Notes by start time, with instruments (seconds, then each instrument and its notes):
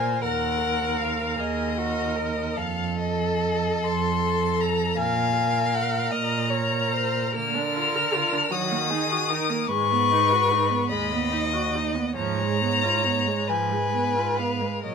Already playing: viola A#4, violin C5 G#5
0.22 cello D#2, violin A#4 F#5, viola A#4
0.62 viola A#4
0.99 violin F5
1.38 cello D#2, violin G#4 D#5
1.78 violin F#4, viola A#4
2.16 violin A#4
2.55 cello F2, violin A4 F5
2.99 viola A4, violin D#5
3.83 cello F2, violin C6
4.24 viola A4
4.61 violin A#5
4.96 cello A#2, viola A#4, violin F5 G#5
5.37 viola A#4
5.74 violin F#5
6.10 cello A#2, violin D#5 A#5
6.50 viola A#4, violin C#5
6.93 violin C5
7.35 cello D3, viola A#3, violin A#4 F6
7.54 viola D4
7.76 viola F4
7.95 viola A#4
8.14 viola F4
8.32 viola D4
8.51 cello D#3, viola F#3, violin F#4 D#6
8.72 viola A#3
8.90 viola D#4, violin G#4
9.11 viola F#4
9.29 viola D#4, violin A#4
9.50 viola A#3
9.68 cello G#2, viola G#3, violin B4 C#6
9.91 viola B3
10.12 viola D#4
10.31 viola F#4
10.51 viola D#4
10.70 viola B3
10.89 cello D#2, viola G#3, violin D#5 B5
11.12 viola B3
11.32 viola D#4
11.53 viola F#4
11.75 viola D#4
11.95 viola B3
12.16 cello G#2, viola F3, violin C#5 A#5
12.39 viola G#3
12.61 viola B3
12.83 viola F4
13.04 viola B3
13.27 viola G#3
13.47 cello G#2, viola F3, violin B4 G#5
13.71 viola G#3
13.94 viola B3
14.16 viola F4
14.39 viola B3, violin F5
14.61 viola G#3
14.84 cello A#2, viola F#3, violin A#4 D#5